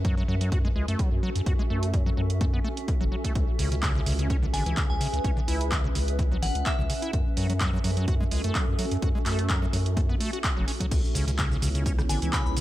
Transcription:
Already playing: F#2 C#4 F#4 A4 B4 E5
0.05 F#3, kick, closed hi-hat
0.17 F#3
0.28 F#2 F#3
0.41 F#3, closed hi-hat
0.52 F#4, kick, closed hi-hat
0.65 G#3
0.75 C#2 G#3
0.88 F#2 A3, closed hi-hat
0.99 F#3, kick, closed hi-hat
1.12 F#2
1.23 F#3
1.35 F#2, closed hi-hat
1.46 F#2 F#4, kick, closed hi-hat
1.59 G#3
1.70 F#2 A3
1.83 closed hi-hat
1.94 F#3, kick, closed hi-hat
2.06 F#3
2.17 F#2 F#3
2.30 closed hi-hat
2.41 A3, kick, closed hi-hat
2.54 B3
2.64 A3
2.77 closed hi-hat
2.88 kick, closed hi-hat
3.01 F#1 F#3
3.12 F#3
3.24 A3, kick, closed hi-hat
3.35 C#2, kick, closed hi-hat
3.54 G#4
3.59 C#2 C#3, open hi-hat
3.72 C#3 B4, closed hi-hat
3.83 C#3, kick, clap, closed hi-hat
3.95 C#3
4.06 C#2 C#3, open hi-hat
4.19 C#3, closed hi-hat
4.30 C#4, kick, closed hi-hat
4.43 D3
4.53 G#1 D3 G#5, open hi-hat
4.66 C#2 E3, closed hi-hat
4.77 C#3, kick, clap, closed hi-hat
4.90 C#2 G#5
5.01 C#3, open hi-hat
5.13 C#2, closed hi-hat
5.24 C#2 C#4, kick, closed hi-hat
5.37 D3
5.48 C#2 E4, open hi-hat
5.61 closed hi-hat
5.72 C#3, kick, clap, closed hi-hat
5.84 C#3
5.95 C#2 C#3, open hi-hat
6.08 closed hi-hat
6.19 E3, kick, closed hi-hat
6.32 F#3
6.42 G#1 E3 F#5, open hi-hat
6.55 C#2, closed hi-hat
6.66 E5, kick, clap, closed hi-hat
6.79 C#2 C#3
6.90 C#3, open hi-hat
7.02 E4, closed hi-hat
7.13 F#2, kick, closed hi-hat
7.26 A4
7.31 F#4
7.37 F#2 F#3, open hi-hat
7.50 F#3, closed hi-hat
7.60 F#3, kick, clap, closed hi-hat
7.73 F#3
7.84 F#2 F#3, open hi-hat
7.97 F#3, closed hi-hat
8.08 F#4, kick, closed hi-hat
8.21 G#3
8.31 C#2 G#3, open hi-hat
8.44 F#2 A3, closed hi-hat
8.55 F#3, kick, clap, closed hi-hat
8.68 F#2
8.79 F#3, open hi-hat
8.91 F#2, closed hi-hat
9.02 F#2 F#4, kick, closed hi-hat
9.15 G#3
9.26 F#2 A3, clap, open hi-hat
9.39 closed hi-hat
9.49 F#3, kick, clap, closed hi-hat
9.62 F#3
9.73 F#2 F#3, open hi-hat
9.86 closed hi-hat
9.97 A3, kick, closed hi-hat
10.09 B3
10.20 A3, open hi-hat
10.33 F#4, closed hi-hat
10.44 kick, clap, closed hi-hat
10.57 F#1 F#3
10.68 C#4, open hi-hat
10.80 F#3, kick, closed hi-hat
10.91 C#2 B3 E4 C#5, kick, closed hi-hat, crash, shaker
11.05 shaker
11.15 C#2 C#3 G#4, open hi-hat, shaker
11.27 C#3, closed hi-hat, shaker
11.37 C#3 B4, kick, clap, closed hi-hat, shaker
11.51 C#3, shaker
11.62 C#2 C#3, open hi-hat, shaker
11.75 C#3, closed hi-hat, shaker
11.86 C#4, kick, closed hi-hat, shaker
11.98 D3, cross-stick, shaker
12.09 G#1 D3 G#5, open hi-hat, shaker
12.22 C#2 E3, closed hi-hat, shaker
12.33 C#3 B5, kick, clap, closed hi-hat, shaker
12.46 C#2 B5, shaker
12.57 C#3, open hi-hat, shaker

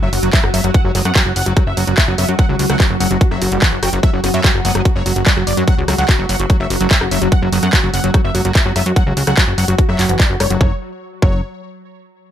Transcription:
Already playing: F#3
0.02 F#1 F#3 E5
0.13 F#1 F#4, open hi-hat
0.23 F#1 F#3 F#4, closed hi-hat
0.33 F#3 E5, kick, clap, closed hi-hat
0.44 F#1 F#4, cross-stick
0.54 F#1 F#3 E5, open hi-hat
0.64 F#1 F#3 F#4, closed hi-hat
0.74 F#5, kick, closed hi-hat
0.85 F#1 F#3 F#4
0.95 F#1 F#3 B3 F#4, open hi-hat
1.05 F#2 B3 F#5, cross-stick, closed hi-hat
1.15 F#3 F#4, kick, clap, closed hi-hat
1.26 F#1 F#3 F#4
1.36 F#1 F#5, open hi-hat
1.46 F#1 F#3 F#4, closed hi-hat
1.57 F#3 F#4, kick, cross-stick, closed hi-hat
1.67 F#1 E5
1.77 F#1 F#3 F#4, open hi-hat
1.87 F#1 F#3 F#4, closed hi-hat
1.98 E5, kick, clap, closed hi-hat
2.08 F#1 F#3 B3 F#4
2.18 F#1 F#3 B3 E5, cross-stick, open hi-hat
2.29 F#2 F#4, closed hi-hat
2.39 F#3 F#5, kick, closed hi-hat
2.49 C#2 F#3 F#4
2.59 C#2 F#4, open hi-hat
2.70 C#2 F#3 A3 F#5, cross-stick, closed hi-hat
2.80 F#3 A3 F#4, kick, clap, closed hi-hat
2.90 F#1 F#4
3.00 F#1 F#3 F#5, open hi-hat
3.11 F#1 F#3 F#4, closed hi-hat
3.21 F#4, kick, closed hi-hat
3.31 F#1 F#3 E5, cross-stick
3.42 F#1 F#4, open hi-hat
3.52 F#1 G3 F#4, closed hi-hat
3.62 E3 F#5, kick, clap, closed hi-hat
3.72 F#1 F#4
3.83 F#1 F#4 G5, cross-stick, open hi-hat
3.93 F#1 F#3 F#4, closed hi-hat
4.03 F#3 E5, kick, closed hi-hat
4.13 F#1 F#3 F#4
4.24 F#1 B3 F#4, cross-stick, open hi-hat
4.34 F#2 F#3 B3 E5, closed hi-hat
4.44 F#3 F#4, kick, clap, closed hi-hat
4.55 F#1 F#4
4.65 F#1 F#3 B3 F#5, open hi-hat
4.75 F#1 F#3 F#4, cross-stick, closed hi-hat
4.85 F#4, kick, closed hi-hat
4.96 F#1 F#3 C#5
5.06 F#1 F#3 F#4, open hi-hat
5.16 F#1 F#4, closed hi-hat
5.26 F#3 D5, kick, clap, closed hi-hat
5.37 F#1 F#3 F#4, cross-stick
5.47 F#1 D5, open hi-hat
5.57 F#2 F#3 F#4, closed hi-hat
5.68 F#3 F#5, kick, closed hi-hat
5.78 C#2 F#4
5.88 C#2 F#3 A3 F#4, cross-stick, open hi-hat
5.98 C#2 F#3 A3 F#5, closed hi-hat
6.09 F#4, kick, clap, closed hi-hat
6.19 F#1 F#3 F#4
6.29 F#1 F#3 F#5, open hi-hat
6.39 F#1 F#4, closed hi-hat
6.50 F#3 F#4, kick, cross-stick, closed hi-hat
6.60 F#1 F#3 E5
6.70 F#1 F#4, open hi-hat
6.81 F#1 F#3 F#4, closed hi-hat
6.91 F#3 E5, kick, clap, closed hi-hat
7.01 F#1 F#4, cross-stick
7.11 F#1 F#3 E5, open hi-hat
7.22 F#1 F#3 F#4, closed hi-hat
7.32 F#5, kick, closed hi-hat
7.42 F#1 F#3 F#4
7.52 F#1 F#3 B3 F#4, open hi-hat
7.63 F#2 B3 F#5, cross-stick, closed hi-hat
7.73 F#3 F#4, kick, clap, closed hi-hat
7.83 F#1 F#3 F#4
7.94 F#1 F#5, open hi-hat
8.04 F#1 F#3 F#4, closed hi-hat
8.14 F#3 F#4, kick, cross-stick, closed hi-hat
8.24 F#1 E5
8.35 F#1 F#3 F#4, open hi-hat
8.45 F#1 F#3 F#4, closed hi-hat
8.55 E5, kick, clap, closed hi-hat
8.65 F#1 F#3 B3 F#4
8.76 F#1 F#3 B3 E5, cross-stick, open hi-hat
8.86 F#2 F#4, closed hi-hat
8.96 F#3 F#5, kick, closed hi-hat
9.07 C#2 F#3 F#4
9.17 C#2 F#4, open hi-hat
9.27 C#2 F#3 A3 F#5, cross-stick, closed hi-hat
9.37 F#3 A3 F#4, kick, clap, closed hi-hat
9.48 F#1 F#4
9.58 F#1 F#3 F#5, open hi-hat
9.68 F#1 F#3 F#4, closed hi-hat
9.78 F#4, kick, closed hi-hat
9.89 F#1 F#3 E5, cross-stick
9.99 F#1 F#4, clap, open hi-hat
10.09 F#1 E3 F#4, closed hi-hat
10.20 F#3 D5, kick, clap, closed hi-hat
10.30 F#1 F#4
10.40 F#1 G3 C#5, cross-stick, open hi-hat
10.50 F#1 F#3 F#4, closed hi-hat
10.61 F#1 F#3 C#5, kick
11.22 F#1 F#3 C#5, kick

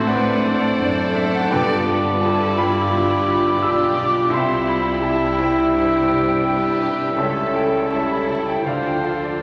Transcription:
Already playing: A1 A2 A3 C4 D4 C5 D5 F#5 G5 A5 B5 C6 D6
0.07 A2 D4 B4 C5 D5 F#5
0.45 A3 A4
0.80 F#1 F#2 D4 C5
1.15 A3 E5
1.35 F#5
1.50 G1 G2 G3 B3 F4 B4 D5 G5
1.88 D4 B4
2.21 E4 G4 A4 A5
2.57 D4 F5 G5 B5
2.91 D3 G4 B4
3.27 D4
3.62 B1 B2 D4 G4 G5 B5 E6
3.96 D4 D6
4.30 C2 C3 C4 E4 G4 E5 C6
4.34 E5 G5 C6
4.66 E4 B5
5.01 E4 G4 A5
5.37 E4 C5 E5 G5
5.73 G2 E4 G4 C5
6.09 D4 E4
6.44 G4 B4
6.80 E4
7.16 C#2 C#3 G3 C#4 A4 C#5 E5
7.53 E4 G5
7.89 G3 E4 A4 A5
7.94 C#5 E5
8.08 B5
8.27 E4 A5
8.46 G5
8.63 D2 D3 F3 D4 F4 A4 C5 F5
8.68 C5 D5
8.84 G5
9.03 F4 A4 F5
9.24 D5

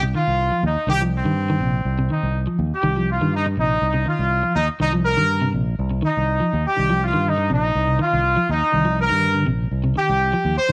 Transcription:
Already playing: C2
0.03 C3
0.14 D#3 F4
0.27 C2
0.52 F3
0.63 D#2 D#4
0.76 muted fingered electric bass stroke
0.87 C2 D#3 G4
1.01 F3
1.15 C4
1.24 G2 D#3
1.50 D#3
1.60 A#1 C3
1.85 C2
1.99 C3
2.10 D#3 D#4
2.23 C2
2.47 F3
2.59 D#2
2.72 G4, muted fingered electric bass stroke
2.83 C2 D#3
2.96 F3
3.11 F4
3.21 G2 D#3
3.35 D#4
3.46 muted clean electric guitar stroke
3.57 A#1 C3 D#4
3.82 C2
3.94 C3
4.06 D#3 F4
4.19 C2
4.43 F3
4.56 D#2 D#4
4.69 muted fingered electric bass stroke
4.80 C2 D#3 D#4
4.93 F3
5.05 A#4
5.17 G2 D#3
5.41 C3
5.53 A#1 C3
5.79 C2
5.91 C3
6.02 D#3 D#4
6.17 C2
6.40 F3
6.53 D#2
6.67 G4
6.77 C2 D#3
6.90 F3
7.04 F4
7.13 G2 D#3
7.28 D#4
7.38 muted clean electric guitar stroke
7.50 A#1 C3 D#4
7.75 C2
7.87 C3
7.99 D#3 F4
8.13 C2
8.36 F3
8.49 D#2 D#4
8.63 muted fingered electric bass stroke
8.72 C2 D#3
8.85 F3
9.01 A#4
9.10 G2 D#3
9.34 D3
9.46 A#1 C3
9.71 C2
9.84 C3
9.96 D#3 G4
10.09 C2
10.33 F3
10.45 D#2
10.58 C5, muted fingered electric bass stroke
10.69 D#3

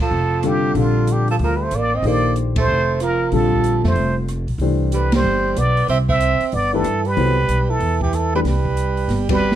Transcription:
0.02 F3 A4
0.11 F1
0.43 D3 G3 C4 F4 G4 A4, cross-stick, closed hi-hat
0.75 A#1 D3 G3 C4 F4 A4, open hi-hat
1.07 D3, closed hi-hat
1.12 G4
1.28 F3 A4, open hi-hat
1.39 D2, open hi-hat
1.43 F3 A#4
1.56 G3 B4
1.63 A3 C5
1.71 A1 D5, cross-stick, closed hi-hat
1.76 A#3
1.95 C4 D#5
2.02 A#1 D#3 D4 G4 A4 C5, open hi-hat
2.07 A#3 D5
2.36 closed hi-hat
2.56 A3 C5, kick, ride
2.67 F1
3.00 F3 A#4, cross-stick, closed hi-hat
3.32 A#1 D3 F3 G3 C4 F4 A4, open hi-hat
3.52 kick
3.64 closed hi-hat
3.84 F2 A3 C5, snare
3.95 F1, open hi-hat
4.28 cross-stick, closed hi-hat
4.47 A#1, open hi-hat
4.58 C2 E3 A3 D4 G4, open hi-hat
4.62 C5
4.92 G3 B4, closed hi-hat
5.12 G3 C5, snare, ride
5.24 G1
5.56 B1 B3 D5, cross-stick, closed hi-hat
5.77 open hi-hat
5.88 C2 C4 E5, open hi-hat
6.09 C4 E5, kick
6.20 closed hi-hat
6.40 muted upright bass stroke, open hi-hat
6.52 G1 B3 D5, open hi-hat
6.73 E3 A3 D4 G4 A4 B4
6.84 G2, cross-stick, closed hi-hat
7.05 G3 B4, open hi-hat
7.17 C2 F#3 B3 E4 A4 C5, open hi-hat
7.48 B1, closed hi-hat
7.70 E3 A4
7.80 E2, open hi-hat
8.01 E3 G4, kick
8.13 E3 A4, cross-stick, closed hi-hat
8.34 E3 G3 A3 D4 G4 B4
8.44 C2 G3 B4, snare, open hi-hat
8.65 kick
8.77 closed hi-hat
8.97 open hi-hat
9.08 G1, snare, open hi-hat
9.29 G3 C4 F#4 B4 D5, kick, ride
9.52 snare

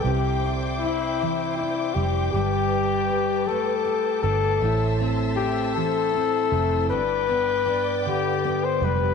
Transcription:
Already playing: D3 G3 B3 G5 D6
0.03 C2 C3 E4 G4 C5 E5
0.44 D4
0.79 E4
0.83 E4
1.22 E3
1.57 D4 E4
1.94 F1 G3 G4
2.32 G1 G3 G4 B4 A5
2.73 G4
3.10 B4
3.47 A3 A4
3.85 G4
4.22 G1 D4 A4
4.61 A1 A2 E4 C5 E5 E6
5.00 C4
5.36 E4 G4
5.75 E3 A4
6.14 C4
6.52 F1 A3
6.89 G1 G2 D4 B4 D5 G5 D6
7.28 B3
7.66 D4
8.05 D3 G4
8.45 B3
8.64 C5
8.82 F1 G3 B4

